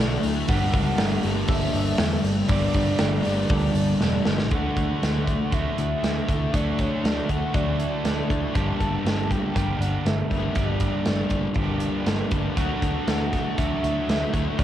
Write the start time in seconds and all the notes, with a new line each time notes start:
Already playing: D3 F#3 A3 D4 E4 F#4 A4 D5
0.00 B1 D3 A3 D4, tambourine
0.23 D2 E4, open hi-hat, tambourine
0.47 G1 G2 D3 G3 A#3 D4 F#5, kick, open hi-hat, tambourine
0.52 G4
0.74 C#2 A#3, kick, open hi-hat, tambourine
0.98 G1 G3, snare, open hi-hat, tambourine
1.23 G1 G2 D3 G3 A#3, open hi-hat, tambourine
1.48 G1 A4 E5, kick, open hi-hat
1.73 G1 D4, open hi-hat, tambourine
1.98 E2 G2 D3 G3 A#3, snare, open hi-hat, tambourine
2.24 G1 D4, open hi-hat, tambourine
2.48 G1 G2 D3 G3 A#3 D4 G4 D5, kick, open hi-hat, tambourine
2.53 G3
2.73 G2 A#3, kick, open hi-hat, tambourine
2.98 G1 G3, snare, open hi-hat, tambourine
3.24 G1 G2 D3 G3 A#3, open hi-hat, tambourine
3.49 D2 A4 D5, kick, open hi-hat, tambourine
3.75 G1 D4, open hi-hat, tambourine
4.01 E1 G2 D3 G3 A#3, snare, tambourine
4.25 G1 D4, snare, tambourine
4.38 snare
4.51 D2 D3 F#3 A3 D4 F#5, kick, closed hi-hat
4.55 F#4
4.76 D2, kick, closed hi-hat
5.01 D2 F#3, snare, closed hi-hat
5.27 A3, kick, closed hi-hat
5.50 D2 D3 F#3 A3 D4 F#4 E5, kick, closed hi-hat
5.78 D2 E4, closed hi-hat
6.03 D2 A3, snare, closed hi-hat
6.27 D2 D3 A3 D4 E4, kick, closed hi-hat
6.52 D2 D3 F#3 A3 D4 F#4 D5, kick, closed hi-hat
6.79 C#5, kick, closed hi-hat
7.04 D2 F#3 D5, snare, closed hi-hat
7.28 D2 A3 F#5, kick, closed hi-hat
7.53 D2 D3 F#3 A3 D4 F#4 D5, kick, closed hi-hat
7.79 E4, closed hi-hat
8.03 D2 A3 D5, snare, closed hi-hat
8.29 D2 D3 A3 D4 E4, kick, closed hi-hat
8.53 G1 G2 D3 G3 A#3 D4 A5, kick, closed hi-hat
8.57 G4
8.80 G1, kick, closed hi-hat
9.04 G1 G3, snare, closed hi-hat
9.30 A#3 G5, kick, closed hi-hat
9.53 G1 G2 D3 G3 A#3 D4 G4 G5, kick, closed hi-hat
9.79 G1 D4 F#5, closed hi-hat
10.05 G1 A#3 E5, snare, closed hi-hat
10.30 G1 G2 D3 G3 D4 E5, kick, closed hi-hat
10.54 G1 G2 D3 G3 A#3 D4 G4 D5, kick, closed hi-hat
10.58 G3
10.80 kick, closed hi-hat
11.04 G1 G3 D5, snare, closed hi-hat
11.30 G1 A#3, kick, closed hi-hat
11.54 G1 G2 D3 G3 A#3 D4 G4, kick, closed hi-hat
11.80 D4, closed hi-hat
12.06 G1 A#3, snare, closed hi-hat
12.31 G1 G2 D3 G3 D4, kick, closed hi-hat
12.56 D2 D3 F#3 A3 D4 F#5, kick, closed hi-hat
12.60 F#4
12.82 D2, kick, closed hi-hat
13.07 D2 F#3, snare, closed hi-hat
13.33 A3, kick, snare, closed hi-hat
13.56 D2 D3 F#3 A3 D4 F#4 E5, kick, closed hi-hat
13.83 D2 E4, closed hi-hat
14.07 D2 A3, snare, closed hi-hat
14.33 D2 D3 A3 D4 E4, kick, closed hi-hat
14.57 D2 D3 F#3 A3 D4 F#4 D5, kick, closed hi-hat